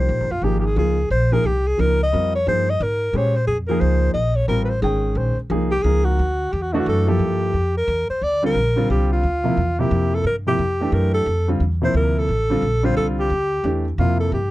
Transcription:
Already playing: grand piano F3 A#3 D#4 G4
0.00 alto saxophone C5
0.09 upright bass A#1
0.20 upright bass G#1
0.31 upright bass F1, alto saxophone F4
0.42 upright bass G#1, grand piano F3 A#3 D#4 G#4, alto saxophone G4
0.60 alto saxophone G4
0.66 alto saxophone G#4
0.76 upright bass C#2, grand piano F3 A#3 D#4 F4, alto saxophone G#4
1.10 upright bass A#1, alto saxophone C5
1.32 grand piano F3 A#3 D#4 G#4, alto saxophone A#4
1.44 upright bass C2, alto saxophone G4
1.67 alto saxophone G#4
1.78 upright bass C#2, grand piano F3 A#3 D#4 A#4, alto saxophone A#4
2.03 alto saxophone D#5
2.12 upright bass F2, grand piano G3 C4 F4 A#4
2.35 alto saxophone C#5
2.47 upright bass G2, grand piano F3 A#3 D#4 G#4, alto saxophone C5
2.70 alto saxophone D#5
2.80 upright bass G#2, alto saxophone A#4
3.13 upright bass A#2, grand piano G#3 C#4 G4 C5, alto saxophone C#5
3.36 alto saxophone C5
3.47 upright bass F2, alto saxophone G#4
3.67 grand piano F3 A#3 D#4 G#4, alto saxophone A#4
3.80 upright bass C#2, alto saxophone C5
4.14 upright bass A#1, alto saxophone D#5
4.36 alto saxophone C#5
4.48 upright bass A1, grand piano G3 C4 F4 A#4, alto saxophone A#4
4.65 alto saxophone B4
4.69 alto saxophone C5
4.82 upright bass G#1, grand piano D#3 G#3 C#4 G5, alto saxophone G#4
5.15 upright bass A#1, alto saxophone C5
5.37 muted upright bass stroke
5.50 upright bass C2, grand piano F3 A#3 D#4 G#4
5.71 alto saxophone G4
5.82 upright bass C#2, grand piano F3 A#3 D#4 A#4, alto saxophone G#4
6.04 alto saxophone F#4
6.19 upright bass D2
6.52 upright bass E2, alto saxophone G4
6.62 alto saxophone F#4
6.73 grand piano E3 A3 D4 F#4, alto saxophone D#4
6.80 alto saxophone F#4
6.86 upright bass F#2, alto saxophone A4
7.07 grand piano F3 A#3 E4 A4, alto saxophone G4
7.19 upright bass G2
7.54 upright bass F2
7.77 alto saxophone A#4
7.88 upright bass E2
8.10 alto saxophone C5, muted upright bass stroke
8.22 upright bass D2, alto saxophone D5
8.43 grand piano D3 G3 C4 F4, alto saxophone A#4
8.55 upright bass A#1
8.76 grand piano D3 G3 C4 F4
8.90 upright bass C2, alto saxophone G4
9.12 alto saxophone F4
9.23 upright bass D2
9.44 grand piano C3 F3 A#3 E4
9.57 upright bass E2
9.79 grand piano C3 F3 A#3 E4, alto saxophone G4
9.91 upright bass F2
10.15 alto saxophone A4
10.24 upright bass G2, alto saxophone A#4
10.47 grand piano C3 F3 A#3 E4, alto saxophone G4
10.59 upright bass F2
10.81 grand piano E3 A3 D4 G4
10.92 upright bass F#2, alto saxophone A#4
11.14 alto saxophone A4
11.26 upright bass F2
11.48 grand piano D3 G3 C4 F4
11.60 upright bass E2
11.82 grand piano C3 F3 A#3 E4, alto saxophone C5
11.94 upright bass D2, alto saxophone A#4
12.19 alto saxophone A4
12.29 upright bass A1
12.50 grand piano D3 G3 C4 F4
12.62 upright bass A#1
12.83 grand piano D3 G3 C4 F4, alto saxophone C5
12.97 upright bass C2, alto saxophone A4
13.20 alto saxophone G4
13.30 upright bass D2
13.64 upright bass E2, grand piano E3 A3 D4 G4
13.98 upright bass F2, grand piano C3 F3 A#3 E4, alto saxophone F4
14.20 alto saxophone A4
14.32 upright bass G2, alto saxophone G4

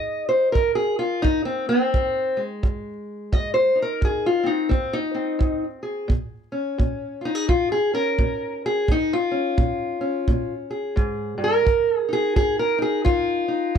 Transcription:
Already playing: steel-string acoustic guitar F2 D#4 G#4 D#5
0.29 steel-string acoustic guitar C5
0.52 steel-string acoustic guitar F2 A#4, kick
0.75 steel-string acoustic guitar G#4
0.99 steel-string acoustic guitar F4
1.22 steel-string acoustic guitar F2 D#4, kick
1.45 steel-string acoustic guitar C4
1.69 steel-string acoustic guitar C4
1.94 steel-string acoustic guitar F2, kick
2.37 steel-string acoustic guitar G#3
2.63 steel-string acoustic guitar F2, kick
3.32 steel-string acoustic guitar F2 D#5, kick
3.54 steel-string acoustic guitar C5
3.75 steel-string acoustic guitar D#4
3.82 steel-string acoustic guitar A#4
4.01 steel-string acoustic guitar F2 G#4, kick
4.26 steel-string acoustic guitar F4
4.44 steel-string acoustic guitar C4 D#4
4.69 steel-string acoustic guitar F2 C4, kick
4.93 steel-string acoustic guitar D#4
5.15 steel-string acoustic guitar C4
5.39 steel-string acoustic guitar F2, kick
5.83 steel-string acoustic guitar G#4
6.08 steel-string acoustic guitar A#2, kick
6.52 steel-string acoustic guitar C#4
6.78 steel-string acoustic guitar A#2, kick
7.21 steel-string acoustic guitar F4
7.25 steel-string acoustic guitar D#4
7.35 steel-string acoustic guitar G#4
7.48 steel-string acoustic guitar A#2 F4, kick
7.72 steel-string acoustic guitar G#4
7.93 steel-string acoustic guitar C#4 A#4
8.19 steel-string acoustic guitar A#2, kick
8.66 steel-string acoustic guitar G#4
8.88 steel-string acoustic guitar A#2 D#4, kick
9.13 steel-string acoustic guitar F4
9.31 steel-string acoustic guitar C#4
9.57 steel-string acoustic guitar A#2, kick
10.01 steel-string acoustic guitar C#4
10.28 steel-string acoustic guitar A#2, kick
10.71 steel-string acoustic guitar G#4
10.96 steel-string acoustic guitar G#2, kick
11.38 steel-string acoustic guitar G2
11.44 steel-string acoustic guitar A#4
11.65 steel-string acoustic guitar F2, kick
11.99 steel-string acoustic guitar G#4
12.09 steel-string acoustic guitar D#4
12.13 steel-string acoustic guitar G#4
12.36 steel-string acoustic guitar F2 G#4, kick
12.59 steel-string acoustic guitar A#4
12.78 steel-string acoustic guitar D#4 G#4
13.05 steel-string acoustic guitar F2 F4, kick
13.48 steel-string acoustic guitar D#4
13.75 steel-string acoustic guitar F2

